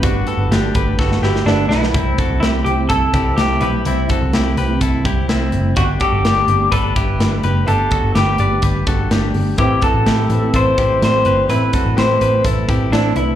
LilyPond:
<<
  \new Staff \with { instrumentName = "Synth keys" } { \time 4/4 \key c \lydian \tempo 4 = 126 <fis' g' b'>8 <fis' g' b'>8 <fis' g' b'>8 <fis' g' a'>8 <fis' g' b'>8 <fis' g' b'>8 <fis' g' b'>8 <fis' g' b'>8 | r1 | r1 | r1 |
r1 | <c' a' b'>8 <c' a' b'>8 <c' a' b'>8 <c' a' b'>8 <c' a' b'>8 <c' a' b'>8 <c' a' d''>8 <c' a' b'>8 | <c' a' b'>8 <c' a' b'>8 <c' a' b'>8 <c' a' b'>8 <c' a' b'>8 <c' a' b'>8 <c' a' b'>8 <c' a' b'>8 | }
  \new Staff \with { instrumentName = "Clean electric guitar" } { \time 4/4 \key c \lydian <d' fis'>8 <fis' a'>8 <d' g'>8 <g' b'>8 <fis' a'>8 <e' g'>8 <b e'>4 | <c' e'>8 <fis' a'>8 <e' g'>4 <e' a'>8 <e' g'>4 <g' b'>8 | <c' e'>8 <fis' a'>8 <e' g'>8 <g' b'>8 <e' a'>8 <e' g'>8 <c' e'>4 | <d' g'>8 <fis' a'>8 <d' g'>4 <d' a'>8 <e' g'>4 <g' b'>8 |
<d' g'>8 <fis' a'>8 <g' b'>8 <b' d''>8 <g' b'>8 <fis' a'>8 <d' g'>4 | <c' e'>8 <fis' a'>8 <e' g'>4 <e' a'>8 <e' g'>4 <g' b'>8 | <c' e'>8 <fis' a'>8 <e' g'>8 <g' b'>8 <e' a'>8 <e' g'>8 <c' e'>4 | }
  \new Staff \with { instrumentName = "Clean electric guitar" } { \time 4/4 \key c \lydian r2. d'8 e'8~ | e'4 e'8 g'8 a'4 g'8 e'8~ | e'8 r2. r8 | fis'8 g'4. b'2 |
a'4 g'4 r2 | g'8 a'4. c''4 c''4 | b'4 c''4 r4 d'8 e'8 | }
  \new Staff \with { instrumentName = "Steel-string acoustic guitar" } { \time 4/4 \key c \lydian <g b d' fis' b'>8. <d' fis' b'>8. <b d' fis' b'>4 <b d' fis' b'>8 <b d' fis' b'>4 | <c g c' e'>4. <c g c' e'>16 <g c' e'>8. <c g c' e'>8 <c g c' e'>8 <c g c'>8 | <c g c' e'>4. <c g c' e'>16 <g c' e'>8. <c g c' e'>8 <c g c' e'>8 <c g c' e'>8 | <g, d g b d' g'>4. <g b d' g'>16 <g b d' g'>8. <g b d' g'>8 <g b d' g'>8 <g b d' g'>8 |
<g, d g b d' g'>4. <g b d' g'>16 <g b d' g'>8. <g b d' g'>8 <g b d' g'>8 <g b d' g'>8 | <a, e a c' e' b'>4. <a c' e' b'>16 <a c' e' b'>8. <a c' e' b'>8 <a c' e' b'>8 <a c' e' b'>8 | <a, e a c' e' b'>4. <a c' e' b'>16 <a c' e' b'>8. <a c' e' b'>8 <a c' e' b'>8 <a c' e' b'>8 | }
  \new Staff \with { instrumentName = "Picked electric bass" } { \clef bass \time 4/4 \key c \lydian g,,8 r16 g,,16 g,,8 g,,8 g,,8 g,,8 g,,8 b,,8 | c,8 r16 c,16 c,8 c,8 c,8 c,8 c,8 b,,8 | c,8 r16 c,16 c,8 c,8 c,8 c,8 c,8 fis,,8 | g,,8 r16 g,,16 g,,8 g,,8 g,,8 g,,8 g,,8 fis,,8 |
g,,8 r16 g,,16 g,,8 g,,8 g,,8 g,,8 g,,8 g,,8 | a,,8 r16 a,,16 a,,8 a,,8 a,,8 a,,8 a,,8 g,,8 | a,,8 r16 a,,16 a,,8 a,,8 a,,8 a,,8 a,,8 c,8 | }
  \new DrumStaff \with { instrumentName = "Drums" } \drummode { \time 4/4 <hh bd>8 hh8 <hh sn>8 <hh bd>8 <bd sn>16 sn16 sn16 sn16 sn8 sn16 sn16 | <hh bd>8 <hh bd>8 <hh sn>8 hh8 <hh bd>8 <hh bd>8 <hh sn>8 hh8 | hh8 <hh bd>8 <hh sn>8 hh8 <hh bd>8 <hh bd>8 <hh sn>8 hh8 | <hh bd>8 <hh bd>8 <hh sn>8 hh8 <hh bd>8 <hh bd>8 <hh sn>8 hh8 |
hh8 <hh bd>8 <hh sn>8 hh8 <hh bd>8 <hh bd>8 <hh sn>8 hho8 | <hh bd>8 <hh bd>8 <hh sn>8 hh8 <hh bd>8 <hh bd>8 <hh sn>8 hh8 | hh8 <hh bd>8 <hh sn>8 hh8 <hh bd>8 <hh bd>8 <hh sn>8 hh8 | }
>>